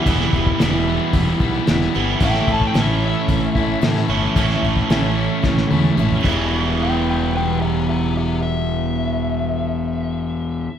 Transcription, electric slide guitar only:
X:1
M:4/4
L:1/16
Q:1/4=111
K:Em
V:1 name="Electric slide guitar"
z16 | g2 a g e2 e8- e2- | e2 z12 z2 | z2 [Bg]2 [Bg]2 [Bg]2 [Ge]2 [Ge]2 [Ge]2 e2- |
e16 |]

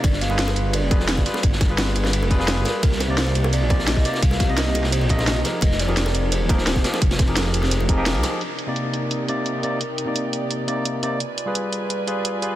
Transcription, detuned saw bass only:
X:1
M:4/4
L:1/16
Q:1/4=172
K:Cm
V:1 name="Detuned saw bass" clef=bass
G,,,3 G,,,3 G,,,3 F,,,4 G,,, z2 | G,,,3 G,,,3 G,,,3 F,,,4 G,,, z2 | C,,3 C,,3 C,,3 B,,,4 C,, z2 | C,,3 C,,3 C,,3 B,,,4 C,, z2 |
F,,,3 F,,,3 F,,,3 E,,,4 F,,, z2 | F,,,3 F,,,3 F,,,3 F,,,4 C,, z2 | z16 | z16 |
z16 |]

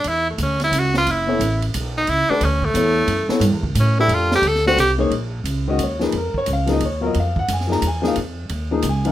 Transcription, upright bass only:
X:1
M:3/4
L:1/8
Q:"Swing" 1/4=177
K:F#phr
V:1 name="Upright bass" clef=bass
E,,2 D,,2 C,,2 | F,,,2 A,,,2 B,,,2 | C,, z D,,2 E,,2 | F,, z (3G,, E,, C,, A,,2 |
=F,,2 D,,2 =C,,2 | [K:Bbphr] B,,,2 D,,2 E,,2 | F,, z D,,2 E,,2 | F,,2 G,,2 =E,,2 |
F,,2 E,,2 D,,2 |]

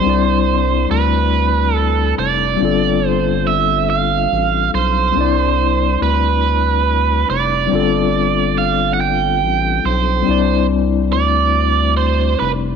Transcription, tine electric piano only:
X:1
M:6/8
L:1/8
Q:3/8=47
K:C
V:1 name="Tine electric piano"
[G,CDEd]6 | [G,CDFA]6 | [G,CDEd]6 | [G,CDFA]6 |
[G,CDEd]6 |]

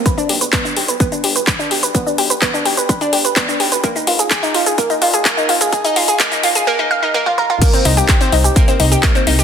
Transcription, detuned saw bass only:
X:1
M:4/4
L:1/8
Q:1/4=127
K:Gphr
V:1 name="Detuned saw bass" clef=bass
z =B,,, z B,,, z G,,, z B,,, | z =B,,, z B,,, z G,,, z B,,, | z B,,, z B,,, z B,, z B,,, | z B,,, z B,,, z4 |
z C,, z C,, z C,, z C,, |]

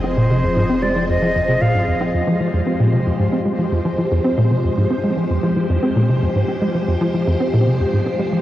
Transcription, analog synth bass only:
X:1
M:4/4
L:1/16
Q:1/4=114
K:Fm
V:1 name="Analog synth bass" clef=bass
C B,, C, F,, A,, C A, F, F,, F, F,, C, B,, A,, F,, C | F,, F, F, F,, C B,, C, F,, A,, C A, F, F,, F, F, F,, | C B,, C, F,, A,, C A, F, F,, F, F, F,, C B,, C, F,, | A,, C A, F, F,, F, F, F,, C B,, C, F,, A,, C A, F, |]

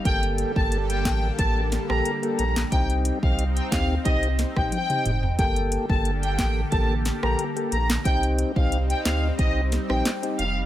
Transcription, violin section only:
X:1
M:4/4
L:1/16
Q:1/4=90
K:Gm
V:1 name="Violin section"
g z2 a z g g z a z2 b z2 b z | g z2 f z g f z e z2 g g3 z | g z2 a z g g z a z2 b z2 b z | g z2 f z g f z e z2 g z2 f z |]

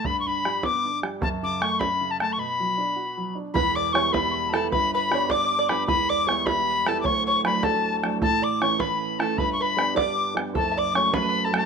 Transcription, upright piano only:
X:1
M:6/8
L:1/8
Q:3/8=103
K:Edor
V:1 name="Upright piano"
G,, D, G, B, D, G, | F,, C, A, C C, A, | B,, F, D F F, D | [E,,,E,,]2 [G,B,E] [G,B,E]2 [G,B,E] |
[G,,,G,,]2 [G,B,D] [G,B,D]2 [G,B,D] | [E,,,E,,]2 [G,B,E] [G,B,E]2 [G,B,E] | [D,,,D,,]2 [F,A,D] [F,A,D]2 [F,A,D] | [A,,,A,,]2 [E,A,C] [E,A,C]2 [E,A,C] |
[G,,,G,,]2 [G,B,D] [G,B,D]2 [G,B,D] | [F,,,F,,]2 [F,A,C] [F,A,C]2 [F,A,C] |]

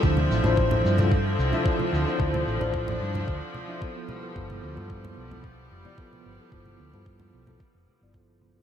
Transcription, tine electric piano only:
X:1
M:4/4
L:1/16
Q:1/4=111
K:Gmix
V:1 name="Tine electric piano"
[F,DEc]3 [F,DEc]4 [F,DEc] z3 [F,DEe] [F,DEc]3 [F,DEc] | [F,DEc]3 [F,DEc]4 [F,DEc] z3 [F,DEe] [F,B,EA]3 [F,B,EA] | [F,B,EA]3 [F,B,EA]4 [F,B,EA] z3 [F,B,Ed] [F,B,EA]3 [F,B,EA] | [F,B,EA]3 [F,B,EA]4 [F,B,EA] z3 [F,B,Ed] [F,B,EA]3 [F,B,EA] |]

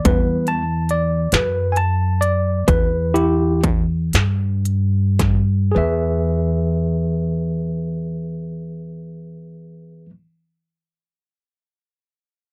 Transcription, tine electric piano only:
X:1
M:12/8
L:1/8
Q:3/8=35
K:Clyd
V:1 name="Tine electric piano"
[E,G,B,B] a d B [^ga] d B [E=G] z4 | [^GBe]12 |]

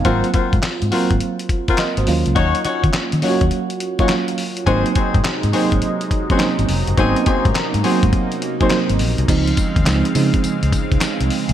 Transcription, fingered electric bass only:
X:1
M:4/4
L:1/16
Q:"Swing 16ths" 1/4=104
K:Abmix
V:1 name="Fingered electric bass" clef=bass
A,,, z2 A,, z A,, z A,,, z4 z A,,, E,, D,, | E,, z2 E, z E, z E,, z8 | A,,, z2 A,, z A,, z A,,, z4 z A,,, F,,, G,,, | A,,, z2 A,, z A,, z A,, z4 z A,,, B,,, C,, |
D,,2 z E,, D,, z D, z2 D,, z D,, z C,, z C,, |]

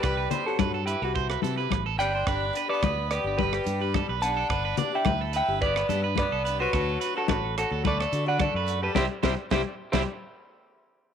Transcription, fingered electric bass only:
X:1
M:4/4
L:1/16
Q:1/4=108
K:G
V:1 name="Fingered electric bass" clef=bass
C,,2 z2 G,,3 C,,3 C,2 A,,,2 G,,,2 | G,,,2 z2 D,,3 G,,,3 G,,3 B,,,3 | G,,,2 z2 D,,3 G,,,3 G,,3 C,,3 | D,,2 z2 A,,,3 D,,3 D,3 F,,3 |
C,, z C,, z C,, z2 C,, z8 |]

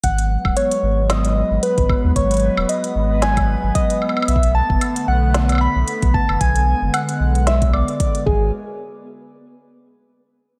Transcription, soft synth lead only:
X:1
M:4/4
L:1/8
Q:"Swing 16ths" 1/4=113
K:Blyd
V:1 name="Soft synth lead"
f2 c2 d2 B2 | c2 d2 g2 d2 | =e =a2 f2 b2 a | g2 f2 =e =d2 G |
z8 |]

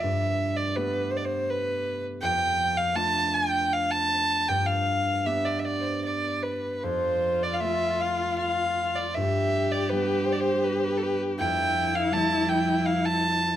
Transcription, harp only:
X:1
M:3/4
L:1/8
Q:1/4=80
K:Gmix
V:1 name="Harp"
G,,2 [A,B,G]4 | F,,2 [A,DF]4 | G,,2 [B,DG]4 | F,,2 [A,CF]4 |
G,,2 [G,B,D]4 | F,,2 [F,G,A,]4 |]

